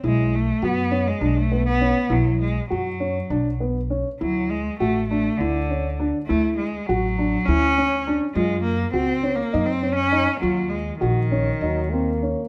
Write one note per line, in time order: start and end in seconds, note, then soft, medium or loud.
0.04 0.50 B1 medium
0.04 0.37 G#3 medium
0.04 0.36 E4 medium
0.35 0.66 A3 medium
0.62 1.09 F#2 medium
0.62 1.09 B3 medium
0.62 0.79 F#4 medium
0.91 1.07 C#4 medium
1.07 1.38 G#3 medium
1.21 1.92 B1 medium
1.21 1.37 D4 medium
1.36 1.65 A3 medium
1.52 1.68 B3 medium
1.66 2.13 B3 medium
1.81 1.97 C#4 medium
2.10 2.57 B1 medium
2.10 2.40 F#3 medium
2.10 2.43 E4 medium
2.40 2.68 G#3 medium
2.69 3.18 F#2 medium
2.69 3.56 F#3 medium
2.69 2.87 F#4 medium
3.00 3.16 C#4 medium
3.30 4.02 B1 medium
3.30 3.47 D4 medium
3.60 3.77 B3 medium
3.90 4.07 C#4 medium
4.20 4.68 D2 medium
4.20 4.52 F#3 medium
4.20 4.53 E4 medium
4.50 4.78 G#3 medium
4.79 5.28 A1 medium
4.79 5.07 A3 medium
4.79 4.96 F#4 medium
5.08 5.38 A3 medium
5.08 5.27 D4 medium
5.36 6.05 D3 medium
5.40 6.11 D2 medium
5.40 5.57 E4 medium
5.70 5.86 C#4 medium
6.00 6.16 D4 medium
6.26 6.55 A3 medium
6.26 6.61 E4 medium
6.30 6.77 D2 medium
6.57 6.88 G#3 medium
6.86 7.36 A1 medium
6.86 7.47 F#3 medium
6.86 7.05 F#4 medium
7.18 7.34 D4 medium
7.45 8.18 D2 medium
7.45 8.13 C#4 loud
7.45 7.64 E4 medium
7.78 7.94 C#4 medium
8.07 8.23 D4 medium
8.34 8.82 F#2 medium
8.34 8.62 G#3 medium
8.34 8.68 F4 medium
8.62 8.91 A#3 medium
8.93 9.41 C#2 medium
8.93 9.37 C4 medium
8.93 9.10 F#4 medium
9.23 9.39 C#4 medium
9.35 9.67 A#3 medium
9.53 10.24 F#2 medium
9.53 9.69 D#4 medium
9.65 9.94 C4 medium
9.82 9.99 C#4 medium
9.95 10.37 C#4 medium
10.12 10.28 D#4 medium
10.39 10.90 D#2 medium
10.39 10.71 F#3 medium
10.39 10.74 F4 medium
10.69 10.99 G#3 medium
11.00 11.49 A#1 medium
11.00 12.18 D#3 medium
11.00 11.17 F#4 medium
11.31 11.48 C#4 medium
11.61 12.34 D#2 medium
11.61 11.92 F#3 medium
11.61 11.79 D#4 medium
11.91 12.48 A#3 medium
11.91 12.09 C4 medium
12.23 12.39 C#4 medium